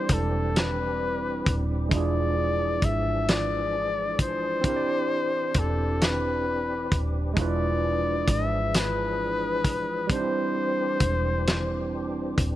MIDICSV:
0, 0, Header, 1, 6, 480
1, 0, Start_track
1, 0, Key_signature, 0, "major"
1, 0, Tempo, 909091
1, 1010, Time_signature, 6, 3, 24, 8
1, 6630, End_track
2, 0, Start_track
2, 0, Title_t, "Flugelhorn"
2, 0, Program_c, 0, 56
2, 0, Note_on_c, 0, 72, 107
2, 68, Note_on_c, 0, 69, 87
2, 76, Note_off_c, 0, 72, 0
2, 311, Note_on_c, 0, 71, 98
2, 319, Note_off_c, 0, 69, 0
2, 840, Note_off_c, 0, 71, 0
2, 1030, Note_on_c, 0, 74, 101
2, 1503, Note_on_c, 0, 76, 99
2, 1511, Note_off_c, 0, 74, 0
2, 1746, Note_on_c, 0, 74, 107
2, 1754, Note_off_c, 0, 76, 0
2, 2218, Note_off_c, 0, 74, 0
2, 2224, Note_on_c, 0, 72, 105
2, 2949, Note_on_c, 0, 69, 88
2, 2957, Note_off_c, 0, 72, 0
2, 3189, Note_on_c, 0, 71, 98
2, 3197, Note_off_c, 0, 69, 0
2, 3719, Note_off_c, 0, 71, 0
2, 3905, Note_on_c, 0, 74, 106
2, 4388, Note_on_c, 0, 76, 99
2, 4396, Note_off_c, 0, 74, 0
2, 4626, Note_on_c, 0, 71, 107
2, 4634, Note_off_c, 0, 76, 0
2, 5345, Note_on_c, 0, 72, 92
2, 5353, Note_off_c, 0, 71, 0
2, 6537, Note_off_c, 0, 72, 0
2, 6630, End_track
3, 0, Start_track
3, 0, Title_t, "Tine electric piano"
3, 0, Program_c, 1, 4
3, 0, Control_c, 1, 64, 127
3, 0, Note_on_c, 1, 55, 68
3, 0, Note_on_c, 1, 60, 66
3, 0, Note_on_c, 1, 62, 62
3, 0, Note_on_c, 1, 64, 63
3, 0, Note_on_c, 1, 74, 79
3, 981, Note_off_c, 1, 55, 0
3, 987, Note_off_c, 1, 60, 0
3, 992, Note_off_c, 1, 62, 0
3, 997, Note_off_c, 1, 64, 0
3, 997, Note_on_c, 1, 56, 62
3, 1003, Note_off_c, 1, 74, 0
3, 1007, Note_on_c, 1, 62, 62
3, 1016, Note_on_c, 1, 64, 60
3, 1017, Control_c, 1, 64, 0
3, 1028, Note_on_c, 1, 65, 61
3, 1040, Note_on_c, 1, 68, 73
3, 1102, Control_c, 1, 64, 127
3, 2422, Note_off_c, 1, 56, 0
3, 2427, Note_off_c, 1, 62, 0
3, 2431, Note_off_c, 1, 64, 0
3, 2436, Note_on_c, 1, 60, 68
3, 2438, Note_off_c, 1, 65, 0
3, 2443, Note_off_c, 1, 68, 0
3, 2446, Note_on_c, 1, 62, 62
3, 2457, Control_c, 1, 64, 0
3, 2458, Note_on_c, 1, 64, 59
3, 2469, Note_on_c, 1, 67, 66
3, 2479, Note_on_c, 1, 70, 58
3, 2499, Note_off_c, 1, 70, 0
3, 2514, Note_on_c, 1, 74, 77
3, 2563, Control_c, 1, 64, 127
3, 3862, Note_off_c, 1, 60, 0
3, 3866, Note_off_c, 1, 62, 0
3, 3872, Note_off_c, 1, 64, 0
3, 3873, Note_on_c, 1, 56, 68
3, 3878, Note_off_c, 1, 67, 0
3, 3883, Note_on_c, 1, 62, 67
3, 3892, Note_on_c, 1, 64, 63
3, 3896, Control_c, 1, 64, 0
3, 3901, Note_off_c, 1, 74, 0
3, 3903, Note_on_c, 1, 65, 65
3, 3914, Note_on_c, 1, 71, 78
3, 3978, Control_c, 1, 64, 127
3, 5300, Note_off_c, 1, 56, 0
3, 5305, Note_off_c, 1, 62, 0
3, 5310, Note_off_c, 1, 64, 0
3, 5315, Note_off_c, 1, 65, 0
3, 5317, Note_on_c, 1, 55, 70
3, 5320, Note_off_c, 1, 71, 0
3, 5330, Note_on_c, 1, 60, 61
3, 5336, Control_c, 1, 64, 0
3, 5340, Note_on_c, 1, 62, 61
3, 5350, Note_on_c, 1, 63, 48
3, 5362, Note_on_c, 1, 72, 72
3, 5374, Note_off_c, 1, 63, 0
3, 5384, Note_on_c, 1, 64, 64
3, 5434, Control_c, 1, 64, 127
3, 6630, Note_off_c, 1, 55, 0
3, 6630, Note_off_c, 1, 60, 0
3, 6630, Note_off_c, 1, 62, 0
3, 6630, Note_off_c, 1, 64, 0
3, 6630, Note_off_c, 1, 72, 0
3, 6630, End_track
4, 0, Start_track
4, 0, Title_t, "Tonewheel organ"
4, 0, Program_c, 2, 16
4, 0, Note_on_c, 2, 52, 70
4, 0, Note_on_c, 2, 60, 69
4, 0, Note_on_c, 2, 62, 67
4, 0, Note_on_c, 2, 67, 78
4, 997, Note_off_c, 2, 60, 0
4, 998, Note_off_c, 2, 67, 0
4, 1012, Note_on_c, 2, 53, 66
4, 1014, Note_on_c, 2, 68, 78
4, 2436, Note_off_c, 2, 53, 0
4, 2437, Note_off_c, 2, 68, 0
4, 2446, Note_on_c, 2, 60, 70
4, 2446, Note_on_c, 2, 67, 76
4, 3868, Note_off_c, 2, 52, 0
4, 3868, Note_off_c, 2, 62, 0
4, 3873, Note_off_c, 2, 60, 0
4, 3873, Note_off_c, 2, 67, 0
4, 3883, Note_on_c, 2, 62, 66
4, 3884, Note_on_c, 2, 53, 67
4, 3885, Note_on_c, 2, 68, 85
4, 3887, Note_on_c, 2, 52, 79
4, 5312, Note_off_c, 2, 53, 0
4, 5313, Note_off_c, 2, 68, 0
4, 5332, Note_on_c, 2, 67, 82
4, 5334, Note_on_c, 2, 60, 65
4, 6630, Note_off_c, 2, 52, 0
4, 6630, Note_off_c, 2, 60, 0
4, 6630, Note_off_c, 2, 62, 0
4, 6630, Note_off_c, 2, 67, 0
4, 6630, End_track
5, 0, Start_track
5, 0, Title_t, "Fingered electric bass"
5, 0, Program_c, 3, 33
5, 56, Note_on_c, 3, 28, 91
5, 752, Note_off_c, 3, 28, 0
5, 779, Note_on_c, 3, 27, 89
5, 993, Note_off_c, 3, 27, 0
5, 1016, Note_on_c, 3, 28, 107
5, 1472, Note_off_c, 3, 28, 0
5, 1496, Note_on_c, 3, 32, 85
5, 2457, Note_off_c, 3, 32, 0
5, 2457, Note_on_c, 3, 28, 110
5, 2912, Note_off_c, 3, 28, 0
5, 2937, Note_on_c, 3, 28, 78
5, 3632, Note_off_c, 3, 28, 0
5, 3657, Note_on_c, 3, 27, 87
5, 3872, Note_off_c, 3, 27, 0
5, 3895, Note_on_c, 3, 28, 104
5, 4351, Note_off_c, 3, 28, 0
5, 4377, Note_on_c, 3, 32, 92
5, 5337, Note_off_c, 3, 32, 0
5, 5337, Note_on_c, 3, 28, 107
5, 5792, Note_off_c, 3, 28, 0
5, 5817, Note_on_c, 3, 28, 87
5, 6512, Note_off_c, 3, 28, 0
5, 6541, Note_on_c, 3, 27, 96
5, 6630, Note_off_c, 3, 27, 0
5, 6630, End_track
6, 0, Start_track
6, 0, Title_t, "Drums"
6, 47, Note_on_c, 9, 42, 72
6, 50, Note_on_c, 9, 36, 80
6, 99, Note_off_c, 9, 42, 0
6, 102, Note_off_c, 9, 36, 0
6, 296, Note_on_c, 9, 42, 72
6, 300, Note_on_c, 9, 38, 116
6, 349, Note_off_c, 9, 42, 0
6, 353, Note_off_c, 9, 38, 0
6, 773, Note_on_c, 9, 36, 92
6, 773, Note_on_c, 9, 42, 71
6, 826, Note_off_c, 9, 36, 0
6, 826, Note_off_c, 9, 42, 0
6, 1011, Note_on_c, 9, 36, 112
6, 1011, Note_on_c, 9, 42, 73
6, 1063, Note_off_c, 9, 36, 0
6, 1064, Note_off_c, 9, 42, 0
6, 1489, Note_on_c, 9, 42, 72
6, 1490, Note_on_c, 9, 36, 82
6, 1541, Note_off_c, 9, 42, 0
6, 1543, Note_off_c, 9, 36, 0
6, 1734, Note_on_c, 9, 42, 78
6, 1738, Note_on_c, 9, 38, 118
6, 1787, Note_off_c, 9, 42, 0
6, 1791, Note_off_c, 9, 38, 0
6, 2211, Note_on_c, 9, 42, 69
6, 2212, Note_on_c, 9, 36, 90
6, 2264, Note_off_c, 9, 42, 0
6, 2265, Note_off_c, 9, 36, 0
6, 2450, Note_on_c, 9, 36, 112
6, 2450, Note_on_c, 9, 42, 68
6, 2503, Note_off_c, 9, 36, 0
6, 2503, Note_off_c, 9, 42, 0
6, 2926, Note_on_c, 9, 42, 72
6, 2930, Note_on_c, 9, 36, 79
6, 2979, Note_off_c, 9, 42, 0
6, 2983, Note_off_c, 9, 36, 0
6, 3176, Note_on_c, 9, 42, 73
6, 3180, Note_on_c, 9, 38, 115
6, 3228, Note_off_c, 9, 42, 0
6, 3233, Note_off_c, 9, 38, 0
6, 3652, Note_on_c, 9, 36, 91
6, 3652, Note_on_c, 9, 42, 73
6, 3705, Note_off_c, 9, 36, 0
6, 3705, Note_off_c, 9, 42, 0
6, 3890, Note_on_c, 9, 36, 113
6, 3890, Note_on_c, 9, 42, 76
6, 3943, Note_off_c, 9, 36, 0
6, 3943, Note_off_c, 9, 42, 0
6, 4369, Note_on_c, 9, 42, 68
6, 4370, Note_on_c, 9, 36, 81
6, 4421, Note_off_c, 9, 42, 0
6, 4423, Note_off_c, 9, 36, 0
6, 4616, Note_on_c, 9, 42, 80
6, 4620, Note_on_c, 9, 38, 106
6, 4669, Note_off_c, 9, 42, 0
6, 4673, Note_off_c, 9, 38, 0
6, 5093, Note_on_c, 9, 36, 89
6, 5093, Note_on_c, 9, 42, 73
6, 5145, Note_off_c, 9, 36, 0
6, 5145, Note_off_c, 9, 42, 0
6, 5329, Note_on_c, 9, 42, 75
6, 5330, Note_on_c, 9, 36, 106
6, 5382, Note_off_c, 9, 42, 0
6, 5383, Note_off_c, 9, 36, 0
6, 5808, Note_on_c, 9, 42, 69
6, 5811, Note_on_c, 9, 36, 85
6, 5861, Note_off_c, 9, 42, 0
6, 5863, Note_off_c, 9, 36, 0
6, 6058, Note_on_c, 9, 42, 79
6, 6062, Note_on_c, 9, 38, 108
6, 6111, Note_off_c, 9, 42, 0
6, 6115, Note_off_c, 9, 38, 0
6, 6535, Note_on_c, 9, 36, 92
6, 6536, Note_on_c, 9, 42, 70
6, 6588, Note_off_c, 9, 36, 0
6, 6589, Note_off_c, 9, 42, 0
6, 6630, End_track
0, 0, End_of_file